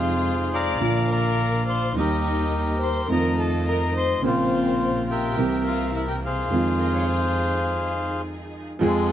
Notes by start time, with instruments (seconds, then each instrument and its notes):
Already playing: double bass F2, grand piano F2 C3 F3 G#3 D#4, string section G#3 D#4 F4, violin section F4, bandoneon G#4 C5 F5
0.54 violin section D5, bandoneon F5 A#5 D6
0.79 grand piano A#1 A#2 D3 F3 A#3, double bass A#1, string section A#3 D4 F4
0.83 grand piano F4
1.10 violin section A#4, bandoneon D5 F5 A#5
1.68 violin section C5, bandoneon C6
1.95 double bass D#2, grand piano D#2 D#3 G3 A#3 G4, string section A#3 D#4 G4, violin section D#4, bandoneon G4 D#5
1.99 bandoneon A#4
2.81 violin section C5, bandoneon C6
3.08 double bass F2, grand piano F2 D#3 F3 A3 C4 F4, string section A3 D#4 F4, violin section A#4, bandoneon A#5
3.13 bandoneon D#5
3.38 violin section A4, bandoneon A5
3.67 violin section A#4, bandoneon A#5
3.96 violin section C5, bandoneon C6
4.22 double bass A#1, grand piano A#1 A#2 C#3 A#3 C4 F4, string section C4 A#4, violin section C4, bandoneon C5
4.27 bandoneon F4
5.10 violin section G4, bandoneon A#4 E5 G5
5.36 double bass C2, grand piano C2 C3 E3 A#3 C4, string section C4 E4 A#4
5.40 grand piano G4
5.65 violin section F4, bandoneon F5
5.94 violin section E4, bandoneon E5
6.08 violin section G4, bandoneon G5
6.23 violin section F4, bandoneon G#4 C5 F5
6.50 double bass F2, grand piano F2 D#3 F3 G#3 C4, string section D#4 F4 G#4
6.54 grand piano F4
6.79 clarinet A#4
6.94 clarinet C#5
7.08 clarinet C5
8.79 grand piano F2 F3 G#3 C4 G#4, double bass F2, string section C4 F4 G#4
8.84 bandoneon F3 G#3 C4